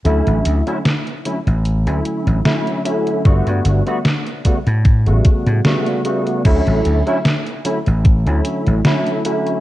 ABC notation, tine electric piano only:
X:1
M:4/4
L:1/16
Q:"Swing 16ths" 1/4=75
K:D
V:1 name="Tine electric piano"
[D,F,A,CE]3 [D,F,A,CE] z2 [D,F,A,CE] z2 [D,F,A,CE]3 [D,F,A,CE]2 [D,F,A,CE]2 | [D,G,A,B,F]3 [D,G,A,B,F] z2 [C,G,A,B,F] z2 [C,G,A,B,F]3 [C,G,A,B,F]2 [C,G,A,B,F]2 | [D,F,A,CE]3 [D,F,A,CE] z2 [D,F,A,CE] z2 [D,F,A,CE]3 [D,F,A,CE]2 [D,F,A,CE]2 |]